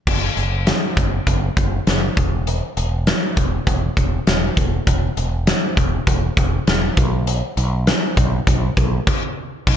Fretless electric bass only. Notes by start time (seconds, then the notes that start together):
0.07 F#1
0.37 F#1
0.97 F#1
1.27 F#1
1.57 F#1
1.87 F#1
2.17 E1
2.77 E1
3.37 E1
3.67 E1
3.97 E1
4.27 E1
4.57 E1
4.87 E1
5.17 E1
5.77 E1
6.07 E1
6.37 E1
6.67 E1
6.97 B1
7.57 B1
8.17 B1
8.47 B1
8.77 B1
9.67 B1